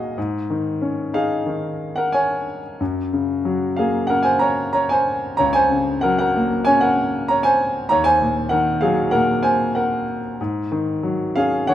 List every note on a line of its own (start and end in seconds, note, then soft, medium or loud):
0.00 0.14 D#2 medium
0.00 0.13 A#2 soft
0.00 0.18 D#3 soft
0.00 0.18 F#3 medium
0.00 0.19 F#4 medium
0.00 0.19 G#4 medium
0.00 0.19 A#4 medium
0.00 0.19 D#5 medium
0.00 0.19 F5 medium
0.00 0.19 F#5 medium
0.18 2.77 G#2 medium
0.50 1.45 D#3 soft
0.82 2.09 C#4 soft
1.14 2.43 D#4 soft
1.14 1.92 G#4 soft
1.14 1.92 F5 medium
1.46 2.76 D#3 soft
1.96 2.13 A#4 medium
1.96 2.12 F#5 medium
2.12 2.61 C#5 medium
2.12 2.60 G#5 medium
2.81 5.35 F#2 soft
3.13 4.09 C#3 soft
3.45 4.71 F#3 soft
3.76 5.04 A#3 soft
3.76 4.08 G#4 medium
3.76 4.10 F5 medium
4.07 5.35 C#3 soft
4.07 4.25 A#4 medium
4.07 4.25 F#5 medium
4.22 4.40 C5 medium
4.22 4.39 G#5 medium
4.39 4.72 C#5 medium
4.39 4.71 A#5 medium
4.73 4.90 C#5 medium
4.73 4.91 A#5 medium
4.89 5.36 C5 medium
4.89 5.39 G#5 medium
5.37 7.86 C#2 soft
5.37 5.54 C#5 medium
5.37 5.53 A#5 medium
5.53 6.00 C5 medium
5.53 6.04 G#5 medium
5.71 6.66 C#3 soft
6.01 7.26 F#3 soft
6.01 6.18 A#4 medium
6.01 6.17 F#5 medium
6.18 6.64 A#4 medium
6.18 6.68 F#5 medium
6.36 7.56 A#3 medium
6.65 7.87 C#3 soft
6.65 6.81 C#5 medium
6.65 6.82 G#5 medium
6.81 7.25 A#4 medium
6.81 7.25 F#5 medium
7.28 7.44 C#5 medium
7.28 7.44 A#5 medium
7.43 7.87 C5 medium
7.43 7.91 G#5 medium
7.89 10.35 D#2 medium
7.89 8.05 C#5 medium
7.89 8.05 A#5 medium
8.04 8.48 C5 medium
8.04 8.52 G#5 loud
8.22 9.13 A#2 soft
8.49 9.73 D#3 soft
8.49 8.79 A#4 medium
8.49 8.82 F#5 medium
8.81 10.04 F#3 medium
8.81 9.11 G#4 medium
8.81 9.13 F5 medium
9.11 10.36 A#2 soft
9.11 9.41 A#4 medium
9.11 9.44 F#5 medium
9.43 9.73 C5 medium
9.43 9.76 G#5 medium
9.75 10.20 A#4 soft
9.75 10.20 F#5 medium
10.41 11.74 G#2 medium
10.72 11.67 D#3 soft
11.03 11.74 F#3 soft
11.36 11.74 C#4 soft
11.36 11.67 G#4 medium
11.36 11.69 F5 medium
11.67 11.74 D#3 soft
11.67 11.74 C#5 medium
11.67 11.74 F#5 medium